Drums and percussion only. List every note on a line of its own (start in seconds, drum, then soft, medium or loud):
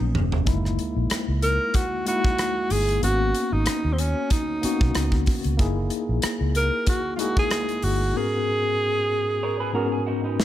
0.15 mid tom medium
0.32 floor tom medium
0.47 kick medium
0.47 closed hi-hat medium
0.65 cross-stick soft
0.79 closed hi-hat medium
1.10 cross-stick loud
1.10 closed hi-hat medium
1.42 closed hi-hat medium
1.74 kick medium
1.74 closed hi-hat medium
2.07 closed hi-hat medium
2.25 kick medium
2.39 cross-stick medium
2.39 closed hi-hat medium
2.70 open hi-hat medium
2.89 closed hi-hat medium
3.03 closed hi-hat medium
3.35 closed hi-hat medium
3.66 cross-stick medium
3.66 closed hi-hat medium
3.98 closed hi-hat medium
4.30 kick medium
4.30 closed hi-hat medium
4.63 closed hi-hat medium
4.81 kick medium
4.95 cross-stick loud
4.95 closed hi-hat medium
5.12 kick medium
5.26 kick medium
5.26 open hi-hat medium
5.44 closed hi-hat soft
5.59 kick medium
5.59 closed hi-hat medium
5.90 closed hi-hat medium
6.22 cross-stick loud
6.22 closed hi-hat medium
6.55 closed hi-hat medium
6.87 kick medium
6.87 closed hi-hat medium
7.19 closed hi-hat medium
7.37 kick loud
7.51 cross-stick loud
7.51 closed hi-hat medium
7.69 closed hi-hat soft
7.82 open hi-hat medium
10.40 snare medium